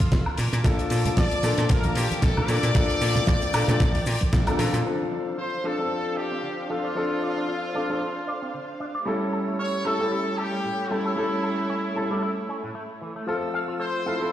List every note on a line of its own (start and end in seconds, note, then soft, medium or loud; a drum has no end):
0.00 0.39 F4 medium
0.00 0.34 A4 medium
0.00 0.34 E6 medium
0.00 muted slap bass stroke soft
0.00 kick medium
0.00 high conga medium
0.00 cabasa soft
0.12 0.21 F1 medium
0.12 kick loud
0.12 snare loud
0.12 closed hi-hat medium
0.12 cabasa medium
0.26 high woodblock medium
0.38 0.47 A#2 medium
0.38 4.82 A#3 medium
0.38 2.47 A5 medium
0.38 4.82 D6 medium
0.38 open hi-hat loud
0.38 cabasa loud
0.53 0.60 A#2 medium
0.53 closed hi-hat medium
0.53 cabasa soft
0.64 0.74 A#1 loud
0.64 1.40 F3 medium
0.64 1.41 A#3 medium
0.64 1.41 D4 medium
0.64 1.41 A4 loud
0.64 kick loud
0.64 closed hi-hat medium
0.64 cabasa medium
0.79 closed hi-hat medium
0.79 cabasa soft
0.90 1.05 A#2 medium
0.90 open hi-hat loud
0.90 cabasa loud
1.05 muted slap bass stroke soft
1.05 closed hi-hat medium
1.05 low conga medium
1.05 cabasa soft
1.17 1.26 A#1 medium
1.17 1.66 D5 loud
1.17 kick loud
1.17 snare loud
1.17 closed hi-hat medium
1.17 cabasa medium
1.31 closed hi-hat medium
1.43 1.52 A#2 medium
1.43 1.56 F3 medium
1.43 1.56 A#3 medium
1.43 1.56 D4 medium
1.43 1.56 A4 medium
1.43 snare soft
1.43 open hi-hat medium
1.43 cabasa medium
1.58 1.65 A#2 medium
1.58 2.46 F3 medium
1.58 2.46 A#3 medium
1.58 2.46 D4 medium
1.58 2.47 A4 medium
1.58 closed hi-hat medium
1.58 cabasa soft
1.69 1.87 A#1 medium
1.69 1.96 A#4 loud
1.69 kick loud
1.69 closed hi-hat loud
1.69 cabasa soft
1.84 closed hi-hat medium
1.84 high conga medium
1.95 2.05 A#2 loud
1.95 2.21 G4 medium
1.95 open hi-hat loud
1.95 cabasa loud
2.11 muted slap bass stroke soft
2.11 closed hi-hat medium
2.11 high conga medium
2.11 cabasa soft
2.22 2.31 A#1 medium
2.22 2.47 A4 loud
2.22 kick loud
2.22 snare loud
2.22 closed hi-hat medium
2.22 cabasa medium
2.37 low conga medium
2.37 high woodblock medium
2.48 2.58 A#2 medium
2.48 2.68 F3 medium
2.48 2.68 A#3 medium
2.48 2.68 D4 medium
2.48 2.68 A4 medium
2.48 4.59 D5 loud
2.48 4.83 G5 medium
2.48 open hi-hat loud
2.48 cabasa medium
2.63 2.71 A#2 medium
2.63 closed hi-hat medium
2.63 cabasa soft
2.74 2.84 A#1 loud
2.74 3.51 F3 loud
2.74 3.51 A#3 medium
2.74 3.51 D4 medium
2.74 3.52 A4 loud
2.74 kick loud
2.74 closed hi-hat medium
2.74 cabasa soft
2.90 closed hi-hat medium
2.90 cabasa soft
3.01 3.15 A#2 medium
3.01 open hi-hat loud
3.01 cabasa medium
3.16 muted slap bass stroke soft
3.16 closed hi-hat medium
3.16 low conga medium
3.16 cabasa soft
3.27 3.37 A#1 medium
3.27 kick loud
3.27 snare loud
3.27 closed hi-hat medium
3.27 cabasa medium
3.42 closed hi-hat medium
3.42 cabasa soft
3.53 3.63 A#2 medium
3.53 3.65 F3 medium
3.53 3.65 A#3 medium
3.53 3.65 D4 medium
3.53 3.65 A4 medium
3.53 open hi-hat loud
3.53 muted conga soft
3.53 cabasa medium
3.53 high woodblock medium
3.68 3.76 A#2 medium
3.68 3.78 F3 medium
3.68 3.78 A#3 medium
3.68 3.79 D4 medium
3.68 3.79 A4 medium
3.68 closed hi-hat medium
3.68 low conga medium
3.68 cabasa soft
3.80 3.98 A#1 medium
3.80 kick loud
3.80 snare soft
3.80 closed hi-hat medium
3.80 cabasa medium
3.95 open hi-hat medium
3.95 high conga medium
4.06 4.16 A#2 loud
4.06 open hi-hat loud
4.06 cabasa medium
4.21 muted slap bass stroke soft
4.21 kick medium
4.21 closed hi-hat medium
4.21 high conga medium
4.21 cabasa soft
4.33 4.50 A#1 medium
4.33 kick loud
4.33 snare loud
4.33 closed hi-hat medium
4.33 cabasa medium
4.47 4.57 F3 medium
4.47 4.57 A#3 medium
4.47 4.57 D4 medium
4.47 4.58 A4 medium
4.47 closed hi-hat medium
4.47 cabasa soft
4.47 high woodblock medium
4.58 4.68 A#2 loud
4.58 4.82 F3 medium
4.58 4.83 A#3 medium
4.58 4.83 D4 medium
4.58 4.83 A4 loud
4.58 open hi-hat loud
4.58 cabasa loud
4.73 4.81 A#2 medium
4.73 closed hi-hat medium
4.73 cabasa soft
4.84 5.61 F3 medium
4.84 5.61 C4 medium
4.84 9.02 D4 medium
4.84 4.93 D4 medium
4.84 5.62 D4 medium
4.84 5.62 A4 medium
4.84 9.02 C5 medium
4.84 9.02 F5 medium
5.12 5.16 D5 medium
5.26 5.35 D4 medium
5.38 5.42 F4 medium
5.38 5.63 C5 medium
5.64 5.77 F3 medium
5.64 5.77 C4 medium
5.64 5.77 D4 medium
5.64 6.17 A4 medium
5.64 5.77 A4 medium
5.64 5.72 D5 medium
5.78 6.66 F3 medium
5.78 6.67 C4 medium
5.78 5.88 C4 medium
5.78 6.67 D4 medium
5.78 6.67 A4 medium
5.90 5.98 A4 medium
6.17 6.70 G4 medium
6.17 6.21 D5 medium
6.32 6.37 C4 medium
6.43 6.48 D3 medium
6.69 6.89 F3 medium
6.69 6.89 C4 medium
6.69 6.74 D4 medium
6.69 6.89 D4 medium
6.69 8.76 F4 medium
6.69 6.89 A4 medium
6.84 6.90 D5 medium
6.95 7.72 F3 medium
6.95 7.72 C4 medium
6.95 7.03 D4 medium
6.95 7.72 D4 medium
6.95 7.73 A4 medium
7.22 7.27 D5 medium
7.37 7.46 D4 medium
7.49 7.53 F4 medium
7.74 7.86 F3 medium
7.74 7.86 C4 medium
7.74 7.86 D4 medium
7.74 7.86 A4 medium
7.74 7.82 D5 medium
7.89 8.00 F3 medium
7.89 8.00 C4 medium
7.89 7.98 C4 medium
7.89 8.00 D4 medium
7.89 8.00 A4 medium
8.01 8.09 A4 medium
8.27 8.32 D5 medium
8.42 8.48 C4 medium
8.54 8.58 D3 medium
8.80 8.85 D4 medium
8.95 9.01 D5 medium
9.05 9.82 G3 medium
9.05 14.32 A3 medium
9.05 9.14 A3 medium
9.05 9.82 C#4 medium
9.05 9.83 E4 medium
9.05 11.15 G4 medium
9.05 9.83 A4 medium
9.05 13.23 C#5 medium
9.33 9.37 A4 medium
9.48 9.56 A3 medium
9.59 9.64 C#4 medium
9.59 9.84 C#5 loud
9.85 9.97 G3 medium
9.85 9.98 C#4 medium
9.85 9.98 E4 medium
9.85 9.93 A4 medium
9.85 10.38 A4 loud
9.85 9.98 A4 medium
9.99 10.87 G3 medium
9.99 10.09 G3 medium
9.99 10.88 C#4 medium
9.99 10.88 E4 medium
9.99 10.88 A4 medium
10.12 10.19 E4 medium
10.38 10.91 G4 medium
10.38 10.42 A4 medium
10.53 10.58 G3 medium
10.64 10.69 A2 medium
10.90 11.10 G3 medium
10.90 10.95 A3 medium
10.90 11.10 C#4 medium
10.90 13.01 E4 medium
10.90 11.10 E4 medium
10.90 11.10 A4 medium
11.06 11.11 A4 medium
11.16 11.93 G3 medium
11.16 11.24 A3 medium
11.16 11.93 C#4 medium
11.16 11.93 E4 medium
11.16 13.25 A4 medium
11.16 11.94 A4 medium
11.43 11.48 A4 medium
11.58 11.67 A3 medium
11.70 11.74 C#4 medium
11.95 12.07 G3 medium
11.95 12.07 C#4 medium
11.95 12.07 E4 medium
11.95 12.03 A4 medium
11.95 12.07 A4 medium
12.10 12.21 G3 medium
12.10 12.19 G3 medium
12.10 12.21 C#4 medium
12.10 12.21 E4 medium
12.10 12.21 A4 medium
12.23 12.30 E4 medium
12.49 12.56 C#4 medium
12.63 12.69 A2 medium
12.75 12.82 A3 medium
13.01 13.12 E3 medium
13.16 13.25 A3 medium
13.27 14.03 F3 medium
13.27 14.32 F3 medium
13.27 14.04 C4 medium
13.27 13.35 F4 medium
13.27 14.04 A4 medium
13.27 14.32 E6 medium
13.54 13.58 F5 medium
13.68 13.77 F4 medium
13.80 13.84 A4 medium
13.80 14.29 C5 loud
14.06 14.19 F3 medium
14.06 14.19 C4 medium
14.06 14.19 E4 medium
14.06 14.19 A4 medium
14.06 14.14 F5 medium
14.20 14.32 F3 medium
14.20 14.32 C4 medium
14.20 14.30 E4 medium
14.20 14.32 A4 medium